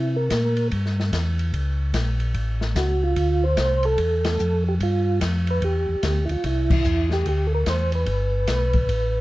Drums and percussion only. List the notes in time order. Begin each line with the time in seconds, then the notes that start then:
0.30 kick, snare, hi-hat pedal, ride
0.57 ride
0.71 kick, ride
0.86 snare
1.00 snare
1.13 kick, snare, hi-hat pedal, ride
1.39 ride
1.54 kick, ride
1.94 kick, snare, hi-hat pedal, ride
2.20 ride
2.34 kick, ride
2.61 snare
2.76 kick, snare, hi-hat pedal, ride
3.16 kick, ride
3.57 kick, snare, hi-hat pedal, ride
3.83 ride
3.98 kick, ride
4.24 snare, ride
4.39 hi-hat pedal
4.80 kick, ride
5.21 kick, snare, hi-hat pedal, ride
5.47 ride
5.62 kick, ride
6.03 kick, snare, hi-hat pedal, ride
6.29 ride
6.44 kick, ride
6.70 kick, crash
6.84 hi-hat pedal
7.11 snare
7.26 kick, ride
7.66 kick, snare, hi-hat pedal, ride
7.92 ride
8.06 kick, ride
8.47 kick, snare, hi-hat pedal, ride
8.73 kick, ride
8.89 kick, ride